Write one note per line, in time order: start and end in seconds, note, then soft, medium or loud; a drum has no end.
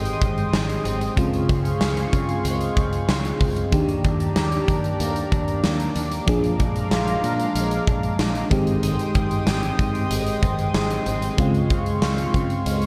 0.00 0.12 G#1 medium
0.00 0.81 D#3 medium
0.00 1.17 D#3 medium
0.00 0.53 G#3 medium
0.00 0.81 G#3 medium
0.00 1.13 G#3 medium
0.00 0.21 C4 medium
0.00 0.81 C4 medium
0.00 0.82 G4 medium
0.00 1.24 G4 medium
0.00 1.14 G5 medium
0.00 1.15 C6 medium
0.00 1.14 D#6 medium
0.05 closed hi-hat medium
0.21 0.44 G#1 loud
0.21 0.85 C4 medium
0.21 kick medium
0.21 closed hi-hat medium
0.38 closed hi-hat soft
0.53 0.76 G#1 loud
0.53 2.45 G#3 medium
0.53 snare loud
0.53 tambourine medium
0.70 closed hi-hat medium
0.85 1.08 G#1 loud
0.85 1.49 C4 medium
0.85 closed hi-hat medium
1.01 closed hi-hat medium
1.16 1.40 C#2 loud
1.16 3.68 C#3 medium
1.16 3.72 F3 medium
1.16 3.68 G#3 medium
1.16 3.69 C4 medium
1.16 3.69 F4 medium
1.16 3.70 G#4 medium
1.16 3.70 F5 medium
1.16 3.70 C6 medium
1.16 3.70 C#6 medium
1.16 kick loud
1.16 closed hi-hat loud
1.33 closed hi-hat soft
1.49 1.72 C#2 loud
1.49 2.12 C4 medium
1.49 kick loud
1.49 closed hi-hat medium
1.65 closed hi-hat medium
1.81 2.04 C#2 medium
1.81 3.79 G#4 medium
1.81 snare loud
1.81 tambourine medium
1.97 closed hi-hat medium
2.13 2.36 C#3 loud
2.13 2.76 C4 medium
2.13 kick medium
2.13 closed hi-hat medium
2.29 closed hi-hat soft
2.45 2.68 C#2 medium
2.45 3.08 G#3 medium
2.45 closed hi-hat loud
2.61 closed hi-hat soft
2.77 3.00 C#2 medium
2.77 3.40 C4 medium
2.77 kick loud
2.77 closed hi-hat medium
2.93 closed hi-hat soft
3.08 3.31 C#2 loud
3.08 3.79 G#3 medium
3.08 snare loud
3.08 tambourine medium
3.25 closed hi-hat medium
3.41 3.64 C#2 loud
3.41 3.79 C4 medium
3.41 kick medium
3.41 open hi-hat medium
3.56 closed hi-hat medium
3.71 3.96 D#2 medium
3.71 6.23 D#3 medium
3.71 6.28 D#3 medium
3.71 6.24 A#3 medium
3.71 6.24 D4 medium
3.71 6.25 G4 medium
3.71 6.24 G4 medium
3.71 6.25 D5 medium
3.71 6.25 A#5 medium
3.71 8.47 D6 medium
3.71 kick loud
3.71 closed hi-hat loud
3.89 closed hi-hat soft
4.04 4.28 D#2 loud
4.04 4.68 D4 medium
4.04 kick medium
4.04 closed hi-hat medium
4.20 closed hi-hat medium
4.36 4.59 D#2 loud
4.36 6.34 G4 medium
4.36 snare loud
4.36 tambourine medium
4.52 closed hi-hat medium
4.68 4.91 D#3 loud
4.68 5.32 D4 medium
4.68 kick medium
4.68 closed hi-hat medium
4.84 closed hi-hat soft
5.00 5.23 D#2 loud
5.00 5.64 A#3 medium
5.00 closed hi-hat loud
5.16 closed hi-hat medium
5.32 5.55 D#2 medium
5.32 5.96 D4 medium
5.32 kick loud
5.32 closed hi-hat medium
5.48 closed hi-hat soft
5.64 5.87 D#2 loud
5.64 7.55 A#3 medium
5.64 snare loud
5.64 tambourine medium
5.80 closed hi-hat medium
5.96 6.19 D#2 loud
5.96 6.60 D4 medium
5.96 closed hi-hat medium
6.12 closed hi-hat medium
6.27 6.51 A#1 loud
6.27 8.47 F3 medium
6.27 8.51 F3 medium
6.27 12.86 G#3 medium
6.27 8.47 A#3 medium
6.27 8.47 D4 medium
6.27 8.48 G#4 medium
6.27 8.49 F5 medium
6.27 8.49 A#5 medium
6.27 kick loud
6.27 closed hi-hat loud
6.44 closed hi-hat soft
6.60 6.83 A#1 loud
6.60 7.23 D4 medium
6.60 kick medium
6.60 closed hi-hat medium
6.76 closed hi-hat medium
6.91 7.15 A#1 loud
6.91 8.58 F4 medium
6.91 snare loud
6.91 tambourine medium
7.08 closed hi-hat medium
7.23 7.46 A#2 loud
7.23 7.87 D4 medium
7.23 closed hi-hat medium
7.40 closed hi-hat soft
7.55 7.78 A#1 loud
7.55 8.19 G#3 medium
7.55 closed hi-hat loud
7.71 closed hi-hat medium
7.87 8.10 A#1 medium
7.87 8.58 D4 medium
7.87 kick loud
7.87 closed hi-hat medium
8.03 closed hi-hat soft
8.19 8.42 A#1 loud
8.19 9.50 G#3 medium
8.19 snare loud
8.19 tambourine medium
8.35 closed hi-hat medium
8.50 8.97 G#1 loud
8.50 11.02 D#3 medium
8.50 8.82 D#3 medium
8.50 11.02 G#3 medium
8.50 11.03 C4 medium
8.50 11.03 G4 medium
8.50 11.36 G5 medium
8.50 12.86 C6 medium
8.50 11.36 D#6 medium
8.50 kick loud
8.50 closed hi-hat medium
8.67 closed hi-hat medium
8.83 11.39 D#3 medium
8.83 closed hi-hat loud
8.99 closed hi-hat soft
9.15 9.38 G#1 loud
9.15 9.79 C4 medium
9.15 kick loud
9.15 closed hi-hat medium
9.31 closed hi-hat medium
9.47 9.70 G#1 loud
9.47 11.45 G4 medium
9.47 snare loud
9.47 tambourine medium
9.63 closed hi-hat medium
9.79 10.02 G#2 medium
9.79 10.43 C4 medium
9.79 kick medium
9.79 closed hi-hat medium
9.95 closed hi-hat soft
10.11 10.34 G#1 medium
10.11 10.74 G#3 medium
10.11 closed hi-hat loud
10.27 closed hi-hat medium
10.43 10.66 G#1 loud
10.43 11.06 C4 medium
10.43 kick loud
10.43 closed hi-hat medium
10.59 closed hi-hat soft
10.74 10.97 G#1 loud
10.74 11.38 G#3 medium
10.74 snare loud
10.74 tambourine medium
10.90 closed hi-hat medium
11.06 11.29 G#1 loud
11.06 11.70 C4 medium
11.06 closed hi-hat medium
11.22 closed hi-hat medium
11.37 11.61 C#2 loud
11.37 12.86 C#3 medium
11.37 12.86 G#3 medium
11.37 12.65 G#3 medium
11.37 12.86 C4 medium
11.37 12.86 F4 medium
11.37 12.86 F5 medium
11.37 12.86 C#6 medium
11.37 kick loud
11.37 closed hi-hat medium
11.54 closed hi-hat soft
11.70 11.93 C#2 loud
11.70 12.33 C4 medium
11.70 kick loud
11.70 closed hi-hat medium
11.86 closed hi-hat medium
12.02 12.25 C#2 loud
12.02 12.86 F4 medium
12.02 snare loud
12.02 tambourine medium
12.18 closed hi-hat medium
12.34 12.57 C#3 loud
12.34 12.86 C4 medium
12.34 kick medium
12.34 closed hi-hat medium
12.50 closed hi-hat soft
12.66 12.86 C#2 loud
12.66 12.86 G#3 medium
12.66 closed hi-hat loud
12.82 closed hi-hat medium